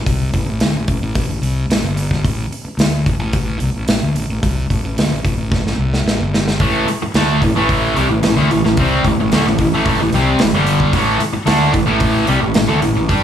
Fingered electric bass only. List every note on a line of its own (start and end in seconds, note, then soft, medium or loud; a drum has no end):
0.06 0.32 C2 medium
0.34 0.47 A1 medium
0.48 0.61 A1 medium
0.61 0.74 D2 medium
0.75 0.88 A1 medium
0.88 1.01 A1 medium
1.02 1.28 A1 medium
1.29 1.41 A1 medium
1.41 1.68 C2 medium
1.69 1.82 A1 medium
1.83 2.22 G1 medium
2.24 2.50 A1 medium
2.51 muted fingered electric bass stroke soft
2.65 muted fingered electric bass stroke soft
2.77 3.04 D2 medium
3.06 3.19 A1 medium
3.19 3.58 A1 medium
3.61 3.74 C2 medium
3.74 3.87 A1 medium
3.88 4.01 A1 medium
4.02 4.14 D2 medium
4.15 4.28 A1 medium
4.29 4.42 A1 medium
4.43 4.68 C2 medium
4.70 4.83 A1 medium
4.84 4.97 A1 medium
4.98 5.10 D2 medium
5.11 5.24 A1 medium
5.25 5.37 A1 medium
5.37 5.63 A1 medium
5.65 5.77 A1 medium
5.78 6.04 C2 medium
6.06 6.18 A1 medium
6.19 6.57 G1 medium
6.60 6.85 A1 medium
6.88 muted fingered electric bass stroke soft
7.02 muted fingered electric bass stroke soft
7.14 7.40 D2 medium
7.42 7.54 A1 medium
7.56 7.94 A1 medium
7.96 8.09 C2 medium
8.11 8.23 A1 medium
8.24 8.36 A1 medium
8.37 8.50 D2 medium
8.52 8.64 A1 medium
8.65 8.77 A1 medium
8.77 9.02 C2 medium
9.04 9.17 A1 medium
9.19 9.31 A1 medium
9.32 9.44 D2 medium
9.46 9.58 A1 medium
9.58 9.71 A1 medium
9.71 9.97 A1 medium
9.99 10.12 A1 medium
10.12 10.37 C2 medium
10.40 10.52 A1 medium
10.53 10.90 G1 medium
10.93 11.18 A1 medium
11.21 muted fingered electric bass stroke soft
11.33 muted fingered electric bass stroke soft
11.47 11.72 D2 medium
11.74 11.87 A1 medium
11.88 12.25 A1 medium
12.28 12.41 C2 medium
12.43 12.55 A1 medium
12.55 12.67 A1 medium
12.68 12.81 D2 medium
12.82 12.95 A1 medium
12.96 13.08 A1 medium
13.09 13.23 G2 medium